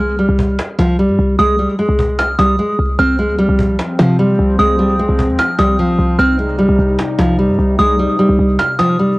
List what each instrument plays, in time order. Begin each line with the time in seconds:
Already playing: 808-style bass C2, synth bell F6
0.00 nylon-string guitar G#3
0.09 cajon slap
0.19 nylon-string guitar G3, cajon slap
0.29 808-style bass C2
0.39 cajon bass
0.49 cajon slap
0.59 cajon slap
0.69 cajon slap
0.79 808-style bass C2, nylon-string guitar F3, cajon slap
0.89 cajon slap
0.99 nylon-string guitar G3, cajon slap
1.04 cajon slap
1.09 808-style bass G2, cajon slap
1.14 cajon slap
1.19 808-style bass C2, cajon slap
1.39 808-style bass C2, nylon-string guitar G#3, synth bell D#6, cajon slap
1.49 cajon slap
1.59 nylon-string guitar G3, cajon slap
1.69 cajon slap
1.79 nylon-string guitar G#3, cajon slap
1.85 808-style bass C2, cajon slap
1.92 cajon slap
1.99 cajon bass
2.09 cajon slap
2.19 synth bell F6, cajon slap
2.29 cajon slap
2.39 808-style bass C2, nylon-string guitar G3, synth bell D#6, cajon slap
2.49 cajon slap
2.59 nylon-string guitar G#3, cajon slap
2.66 cajon slap
2.72 cajon slap
2.79 808-style bass C2, cajon slap
2.86 cajon slap
2.92 cajon slap
2.99 808-style bass C2, analog synth pad F3 C4, nylon-string guitar C4, synth bell F6, cajon slap
3.09 cajon slap
3.19 nylon-string guitar G#3, cajon slap
3.29 808-style bass D2, cajon slap
3.38 808-style bass C2, nylon-string guitar G3, cajon slap
3.49 808-style bass C2
3.59 cajon bass
3.69 cajon slap
3.79 cajon slap
3.89 cajon slap
3.99 808-style bass C3, nylon-string guitar F3, cajon slap
4.09 cajon slap
4.19 nylon-string guitar G3, cajon slap
4.24 cajon slap
4.29 cajon slap
4.34 cajon slap
4.39 808-style bass C2, cajon slap
4.59 808-style bass C2, nylon-string guitar G#3, synth bell D#6, cajon slap
4.69 cajon slap
4.79 nylon-string guitar G3, cajon slap
4.89 cajon slap
4.99 nylon-string guitar G#3, cajon slap
5.09 808-style bass C2
5.19 cajon bass
5.29 808-style bass D#2, cajon slap
5.39 synth bell F6, cajon slap
5.49 cajon slap
5.59 808-style bass C2, nylon-string guitar G3, synth bell D#6, cajon slap
5.69 cajon slap
5.79 nylon-string guitar F3, cajon slap
5.84 cajon slap
5.89 808-style bass B1, cajon slap
5.94 cajon slap
5.99 808-style bass C2, cajon slap
6.19 808-style bass C2, analog synth pad C3 G3 D#4, nylon-string guitar C4, synth bell F6
6.29 cajon slap
6.39 nylon-string guitar G#3, cajon slap
6.49 cajon slap
6.59 nylon-string guitar G3, cajon slap
6.69 808-style bass C2
6.79 808-style bass C2, cajon slap
6.89 cajon slap
6.99 cajon slap
7.09 cajon slap
7.19 808-style bass C2, nylon-string guitar F3, cajon slap
7.29 cajon slap
7.39 nylon-string guitar G3, cajon slap
7.44 cajon slap
7.49 808-style bass G2, cajon slap
7.54 cajon slap
7.59 808-style bass C2, cajon slap
7.79 808-style bass C2, nylon-string guitar G#3, synth bell D#6, cajon slap
7.89 cajon slap
7.99 nylon-string guitar G3, cajon slap
8.09 cajon slap
8.19 nylon-string guitar G3, cajon slap
8.26 808-style bass C2, cajon slap
8.32 cajon slap
8.39 808-style bass C2
8.49 cajon slap
8.59 synth bell F6, cajon slap
8.69 cajon slap
8.79 nylon-string guitar F3, synth bell D#6, cajon slap
8.89 cajon slap
8.99 nylon-string guitar G3, cajon slap
9.06 cajon slap
9.12 cajon slap